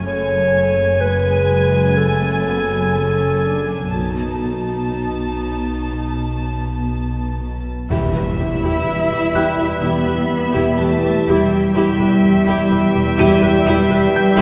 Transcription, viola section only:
0, 0, Header, 1, 2, 480
1, 0, Start_track
1, 0, Tempo, 966184
1, 34, Time_signature, 4, 2, 24, 8
1, 1474, Tempo, 986842
1, 3874, Tempo, 960000
1, 7131, End_track
2, 0, Start_track
2, 0, Title_t, "Viola section"
2, 0, Program_c, 0, 48
2, 29, Note_on_c, 0, 57, 58
2, 497, Note_off_c, 0, 57, 0
2, 505, Note_on_c, 0, 56, 61
2, 986, Note_off_c, 0, 56, 0
2, 986, Note_on_c, 0, 57, 51
2, 1230, Note_off_c, 0, 57, 0
2, 1230, Note_on_c, 0, 59, 50
2, 1473, Note_on_c, 0, 61, 47
2, 1474, Note_off_c, 0, 59, 0
2, 1713, Note_off_c, 0, 61, 0
2, 1714, Note_on_c, 0, 62, 41
2, 1954, Note_off_c, 0, 62, 0
2, 1954, Note_on_c, 0, 63, 40
2, 3635, Note_off_c, 0, 63, 0
2, 3876, Note_on_c, 0, 64, 50
2, 3878, Note_on_c, 0, 67, 52
2, 3990, Note_off_c, 0, 64, 0
2, 3990, Note_off_c, 0, 67, 0
2, 3999, Note_on_c, 0, 71, 33
2, 4000, Note_on_c, 0, 67, 34
2, 4039, Note_off_c, 0, 71, 0
2, 4040, Note_off_c, 0, 67, 0
2, 4119, Note_on_c, 0, 67, 32
2, 4159, Note_off_c, 0, 67, 0
2, 4239, Note_on_c, 0, 64, 40
2, 4239, Note_on_c, 0, 67, 50
2, 4350, Note_off_c, 0, 64, 0
2, 4350, Note_off_c, 0, 67, 0
2, 4359, Note_on_c, 0, 67, 37
2, 4360, Note_on_c, 0, 71, 32
2, 4399, Note_off_c, 0, 67, 0
2, 4400, Note_off_c, 0, 71, 0
2, 4479, Note_on_c, 0, 67, 38
2, 4519, Note_off_c, 0, 67, 0
2, 4597, Note_on_c, 0, 67, 53
2, 4598, Note_on_c, 0, 64, 60
2, 4710, Note_off_c, 0, 64, 0
2, 4710, Note_off_c, 0, 67, 0
2, 4718, Note_on_c, 0, 67, 38
2, 4718, Note_on_c, 0, 71, 41
2, 4758, Note_off_c, 0, 67, 0
2, 4758, Note_off_c, 0, 71, 0
2, 4839, Note_on_c, 0, 64, 47
2, 4839, Note_on_c, 0, 67, 54
2, 4951, Note_off_c, 0, 64, 0
2, 4951, Note_off_c, 0, 67, 0
2, 4961, Note_on_c, 0, 67, 33
2, 4962, Note_on_c, 0, 71, 39
2, 5001, Note_off_c, 0, 67, 0
2, 5002, Note_off_c, 0, 71, 0
2, 5197, Note_on_c, 0, 67, 67
2, 5199, Note_on_c, 0, 64, 56
2, 5311, Note_off_c, 0, 67, 0
2, 5312, Note_off_c, 0, 64, 0
2, 5320, Note_on_c, 0, 67, 49
2, 5321, Note_on_c, 0, 71, 39
2, 5360, Note_off_c, 0, 67, 0
2, 5361, Note_off_c, 0, 71, 0
2, 5439, Note_on_c, 0, 67, 45
2, 5440, Note_off_c, 0, 67, 0
2, 5440, Note_on_c, 0, 67, 50
2, 5480, Note_off_c, 0, 67, 0
2, 5563, Note_on_c, 0, 64, 66
2, 5563, Note_on_c, 0, 67, 62
2, 5674, Note_off_c, 0, 64, 0
2, 5674, Note_off_c, 0, 67, 0
2, 5800, Note_on_c, 0, 67, 76
2, 5801, Note_on_c, 0, 64, 64
2, 5912, Note_off_c, 0, 67, 0
2, 5913, Note_off_c, 0, 64, 0
2, 5921, Note_on_c, 0, 67, 46
2, 5922, Note_on_c, 0, 71, 45
2, 5961, Note_off_c, 0, 67, 0
2, 5962, Note_off_c, 0, 71, 0
2, 6038, Note_on_c, 0, 67, 46
2, 6039, Note_off_c, 0, 67, 0
2, 6039, Note_on_c, 0, 67, 44
2, 6079, Note_off_c, 0, 67, 0
2, 6158, Note_on_c, 0, 64, 65
2, 6160, Note_on_c, 0, 67, 64
2, 6270, Note_off_c, 0, 64, 0
2, 6271, Note_off_c, 0, 67, 0
2, 6277, Note_on_c, 0, 67, 58
2, 6277, Note_on_c, 0, 71, 55
2, 6317, Note_off_c, 0, 67, 0
2, 6317, Note_off_c, 0, 71, 0
2, 6399, Note_on_c, 0, 67, 48
2, 6439, Note_off_c, 0, 67, 0
2, 6514, Note_on_c, 0, 67, 83
2, 6515, Note_on_c, 0, 64, 77
2, 6628, Note_off_c, 0, 67, 0
2, 6629, Note_off_c, 0, 64, 0
2, 6635, Note_on_c, 0, 71, 55
2, 6636, Note_on_c, 0, 67, 56
2, 6675, Note_off_c, 0, 71, 0
2, 6676, Note_off_c, 0, 67, 0
2, 6754, Note_on_c, 0, 64, 82
2, 6755, Note_on_c, 0, 67, 73
2, 6867, Note_off_c, 0, 64, 0
2, 6868, Note_off_c, 0, 67, 0
2, 6874, Note_on_c, 0, 67, 49
2, 6874, Note_on_c, 0, 71, 52
2, 6914, Note_off_c, 0, 67, 0
2, 6914, Note_off_c, 0, 71, 0
2, 7112, Note_on_c, 0, 67, 96
2, 7113, Note_on_c, 0, 64, 91
2, 7131, Note_off_c, 0, 64, 0
2, 7131, Note_off_c, 0, 67, 0
2, 7131, End_track
0, 0, End_of_file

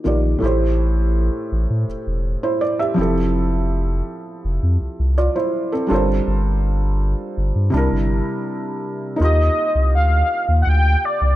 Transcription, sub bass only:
0, 0, Header, 1, 2, 480
1, 0, Start_track
1, 0, Key_signature, -1, "major"
1, 0, Tempo, 731707
1, 274, Time_signature, 4, 2, 24, 8
1, 7451, End_track
2, 0, Start_track
2, 0, Title_t, "Sub bass"
2, 0, Program_c, 0, 38
2, 39, Note_on_c, 0, 34, 82
2, 232, Note_off_c, 0, 34, 0
2, 280, Note_on_c, 0, 33, 113
2, 851, Note_off_c, 0, 33, 0
2, 998, Note_on_c, 0, 33, 89
2, 1094, Note_off_c, 0, 33, 0
2, 1118, Note_on_c, 0, 45, 90
2, 1214, Note_off_c, 0, 45, 0
2, 1238, Note_on_c, 0, 28, 51
2, 1285, Note_off_c, 0, 28, 0
2, 1359, Note_on_c, 0, 28, 81
2, 1551, Note_off_c, 0, 28, 0
2, 1958, Note_on_c, 0, 29, 98
2, 2637, Note_off_c, 0, 29, 0
2, 2918, Note_on_c, 0, 29, 94
2, 3014, Note_off_c, 0, 29, 0
2, 3036, Note_on_c, 0, 41, 94
2, 3133, Note_off_c, 0, 41, 0
2, 3157, Note_on_c, 0, 36, 48
2, 3204, Note_off_c, 0, 36, 0
2, 3277, Note_on_c, 0, 36, 82
2, 3471, Note_off_c, 0, 36, 0
2, 3877, Note_on_c, 0, 31, 94
2, 4070, Note_off_c, 0, 31, 0
2, 4116, Note_on_c, 0, 31, 106
2, 4689, Note_off_c, 0, 31, 0
2, 4838, Note_on_c, 0, 31, 94
2, 4934, Note_off_c, 0, 31, 0
2, 4957, Note_on_c, 0, 43, 91
2, 5053, Note_off_c, 0, 43, 0
2, 5077, Note_on_c, 0, 36, 100
2, 5173, Note_off_c, 0, 36, 0
2, 5198, Note_on_c, 0, 31, 87
2, 5391, Note_off_c, 0, 31, 0
2, 6037, Note_on_c, 0, 39, 119
2, 6231, Note_off_c, 0, 39, 0
2, 6397, Note_on_c, 0, 36, 90
2, 6518, Note_on_c, 0, 38, 88
2, 6528, Note_off_c, 0, 36, 0
2, 6711, Note_off_c, 0, 38, 0
2, 6878, Note_on_c, 0, 39, 99
2, 6974, Note_off_c, 0, 39, 0
2, 6998, Note_on_c, 0, 38, 104
2, 7191, Note_off_c, 0, 38, 0
2, 7357, Note_on_c, 0, 36, 89
2, 7451, Note_off_c, 0, 36, 0
2, 7451, End_track
0, 0, End_of_file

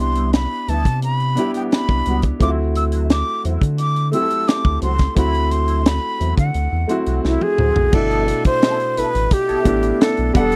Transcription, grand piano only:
0, 0, Header, 1, 2, 480
1, 0, Start_track
1, 0, Key_signature, 1, "major"
1, 0, Tempo, 690449
1, 1673, Time_signature, 4, 2, 24, 8
1, 7341, End_track
2, 0, Start_track
2, 0, Title_t, "Grand piano"
2, 0, Program_c, 0, 0
2, 0, Control_c, 0, 64, 127
2, 0, Note_on_c, 0, 59, 61
2, 0, Note_on_c, 0, 62, 54
2, 0, Note_on_c, 0, 64, 60
2, 0, Note_on_c, 0, 67, 65
2, 477, Note_off_c, 0, 59, 0
2, 481, Note_off_c, 0, 62, 0
2, 484, Note_off_c, 0, 64, 0
2, 488, Note_off_c, 0, 67, 0
2, 942, Note_on_c, 0, 59, 65
2, 949, Note_on_c, 0, 62, 64
2, 958, Note_on_c, 0, 64, 66
2, 965, Note_on_c, 0, 67, 78
2, 1496, Note_off_c, 0, 59, 0
2, 1500, Note_off_c, 0, 62, 0
2, 1504, Note_off_c, 0, 64, 0
2, 1508, Note_off_c, 0, 67, 0
2, 1666, Note_on_c, 0, 57, 68
2, 1675, Note_on_c, 0, 60, 59
2, 1681, Note_on_c, 0, 64, 60
2, 1683, Control_c, 0, 64, 0
2, 1688, Note_on_c, 0, 65, 56
2, 1726, Note_off_c, 0, 65, 0
2, 1734, Note_on_c, 0, 66, 71
2, 1791, Control_c, 0, 64, 127
2, 2401, Note_off_c, 0, 57, 0
2, 2405, Note_off_c, 0, 60, 0
2, 2408, Note_off_c, 0, 64, 0
2, 2435, Note_off_c, 0, 66, 0
2, 2862, Note_on_c, 0, 57, 72
2, 2870, Note_on_c, 0, 60, 59
2, 2878, Note_on_c, 0, 64, 55
2, 2885, Note_on_c, 0, 67, 57
2, 2925, Note_off_c, 0, 67, 0
2, 2931, Note_on_c, 0, 69, 76
2, 3416, Note_off_c, 0, 57, 0
2, 3421, Note_off_c, 0, 60, 0
2, 3424, Note_off_c, 0, 64, 0
2, 3451, Note_off_c, 0, 69, 0
2, 3582, Note_on_c, 0, 57, 63
2, 3591, Note_on_c, 0, 60, 65
2, 3598, Note_on_c, 0, 64, 59
2, 3605, Note_on_c, 0, 66, 75
2, 4319, Note_off_c, 0, 57, 0
2, 4324, Note_off_c, 0, 60, 0
2, 4327, Note_off_c, 0, 64, 0
2, 4331, Note_off_c, 0, 66, 0
2, 4780, Note_on_c, 0, 57, 67
2, 4788, Note_on_c, 0, 60, 69
2, 4796, Note_on_c, 0, 64, 59
2, 4803, Note_on_c, 0, 66, 83
2, 5336, Note_off_c, 0, 57, 0
2, 5340, Note_off_c, 0, 60, 0
2, 5343, Note_off_c, 0, 64, 0
2, 5347, Note_off_c, 0, 66, 0
2, 5505, Note_on_c, 0, 57, 58
2, 5512, Note_on_c, 0, 47, 61
2, 5518, Note_on_c, 0, 62, 64
2, 5522, Control_c, 0, 64, 0
2, 5526, Note_on_c, 0, 64, 73
2, 5654, Control_c, 0, 64, 127
2, 6241, Note_off_c, 0, 57, 0
2, 6244, Note_off_c, 0, 47, 0
2, 6247, Note_off_c, 0, 62, 0
2, 6251, Note_off_c, 0, 64, 0
2, 6700, Note_on_c, 0, 57, 73
2, 6707, Note_on_c, 0, 59, 65
2, 6717, Note_on_c, 0, 62, 69
2, 6724, Note_on_c, 0, 64, 72
2, 7180, Note_off_c, 0, 59, 0
2, 7184, Note_on_c, 0, 55, 81
2, 7187, Note_off_c, 0, 57, 0
2, 7189, Note_off_c, 0, 62, 0
2, 7190, Note_on_c, 0, 59, 81
2, 7199, Note_off_c, 0, 64, 0
2, 7199, Note_on_c, 0, 62, 71
2, 7205, Control_c, 0, 64, 0
2, 7206, Note_on_c, 0, 78, 96
2, 7333, Control_c, 0, 64, 127
2, 7341, Note_off_c, 0, 55, 0
2, 7341, Note_off_c, 0, 59, 0
2, 7341, Note_off_c, 0, 62, 0
2, 7341, Note_off_c, 0, 78, 0
2, 7341, End_track
0, 0, End_of_file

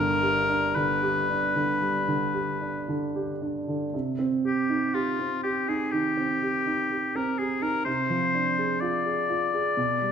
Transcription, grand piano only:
0, 0, Header, 1, 2, 480
1, 0, Start_track
1, 0, Key_signature, -3, "minor"
1, 0, Tempo, 1065719
1, 1773, Time_signature, 4, 2, 24, 8
1, 1773, Tempo, 1015228
1, 2253, Tempo, 978793
1, 3213, Tempo, 953895
1, 4828, End_track
2, 0, Start_track
2, 0, Title_t, "Grand piano"
2, 0, Program_c, 0, 0
2, 0, Control_c, 0, 64, 127
2, 0, Note_on_c, 0, 31, 55
2, 0, Note_on_c, 0, 43, 63
2, 0, Note_on_c, 0, 50, 48
2, 101, Note_on_c, 0, 67, 47
2, 171, Note_off_c, 0, 50, 0
2, 221, Note_on_c, 0, 62, 49
2, 292, Note_off_c, 0, 67, 0
2, 342, Note_on_c, 0, 50, 48
2, 412, Note_off_c, 0, 62, 0
2, 464, Note_on_c, 0, 67, 47
2, 532, Note_off_c, 0, 50, 0
2, 582, Note_on_c, 0, 62, 48
2, 652, Note_off_c, 0, 67, 0
2, 700, Note_on_c, 0, 50, 42
2, 770, Note_off_c, 0, 62, 0
2, 796, Note_off_c, 0, 31, 0
2, 799, Note_off_c, 0, 43, 0
2, 817, Note_on_c, 0, 55, 45
2, 889, Note_off_c, 0, 50, 0
2, 938, Note_on_c, 0, 50, 46
2, 1008, Note_off_c, 0, 55, 0
2, 1056, Note_on_c, 0, 67, 41
2, 1128, Note_off_c, 0, 50, 0
2, 1177, Note_on_c, 0, 62, 40
2, 1247, Note_off_c, 0, 67, 0
2, 1300, Note_on_c, 0, 50, 49
2, 1368, Note_off_c, 0, 62, 0
2, 1422, Note_on_c, 0, 67, 44
2, 1490, Note_off_c, 0, 50, 0
2, 1540, Note_on_c, 0, 62, 43
2, 1612, Note_off_c, 0, 67, 0
2, 1659, Note_on_c, 0, 50, 41
2, 1729, Note_off_c, 0, 62, 0
2, 1774, Note_off_c, 0, 50, 0
2, 1774, Note_on_c, 0, 48, 44
2, 1780, Control_c, 0, 64, 0
2, 1865, Control_c, 0, 64, 127
2, 1892, Note_on_c, 0, 60, 40
2, 2015, Note_on_c, 0, 67, 32
2, 2086, Note_off_c, 0, 60, 0
2, 2132, Note_on_c, 0, 63, 39
2, 2206, Note_off_c, 0, 67, 0
2, 2250, Note_on_c, 0, 67, 44
2, 2324, Note_off_c, 0, 63, 0
2, 2371, Note_on_c, 0, 60, 31
2, 2444, Note_off_c, 0, 67, 0
2, 2494, Note_on_c, 0, 67, 36
2, 2564, Note_off_c, 0, 60, 0
2, 2612, Note_on_c, 0, 63, 37
2, 2685, Note_off_c, 0, 67, 0
2, 2714, Note_off_c, 0, 48, 0
2, 2732, Note_on_c, 0, 51, 38
2, 2804, Note_off_c, 0, 63, 0
2, 2852, Note_on_c, 0, 60, 32
2, 2925, Note_off_c, 0, 51, 0
2, 2976, Note_on_c, 0, 67, 35
2, 3045, Note_off_c, 0, 60, 0
2, 3093, Note_on_c, 0, 63, 34
2, 3166, Note_off_c, 0, 67, 0
2, 3215, Note_on_c, 0, 67, 33
2, 3285, Note_off_c, 0, 63, 0
2, 3336, Note_on_c, 0, 60, 36
2, 3407, Note_off_c, 0, 67, 0
2, 3456, Note_on_c, 0, 67, 34
2, 3527, Note_off_c, 0, 60, 0
2, 3569, Note_on_c, 0, 63, 35
2, 3646, Note_off_c, 0, 67, 0
2, 3690, Note_off_c, 0, 63, 0
2, 3690, Note_on_c, 0, 48, 50
2, 3702, Control_c, 0, 64, 0
2, 3771, Control_c, 0, 64, 127
2, 3813, Note_on_c, 0, 53, 38
2, 3934, Note_on_c, 0, 62, 37
2, 4004, Note_off_c, 0, 53, 0
2, 4057, Note_on_c, 0, 68, 33
2, 4126, Note_off_c, 0, 62, 0
2, 4174, Note_on_c, 0, 65, 44
2, 4249, Note_off_c, 0, 68, 0
2, 4294, Note_on_c, 0, 68, 34
2, 4367, Note_off_c, 0, 65, 0
2, 4415, Note_on_c, 0, 65, 40
2, 4487, Note_off_c, 0, 68, 0
2, 4537, Note_on_c, 0, 68, 34
2, 4606, Note_off_c, 0, 65, 0
2, 4632, Note_off_c, 0, 48, 0
2, 4653, Note_on_c, 0, 47, 49
2, 4655, Note_off_c, 0, 68, 0
2, 4661, Control_c, 0, 64, 0
2, 4739, Control_c, 0, 64, 127
2, 4777, Note_on_c, 0, 55, 35
2, 4828, Note_off_c, 0, 47, 0
2, 4828, Note_off_c, 0, 55, 0
2, 4828, End_track
0, 0, End_of_file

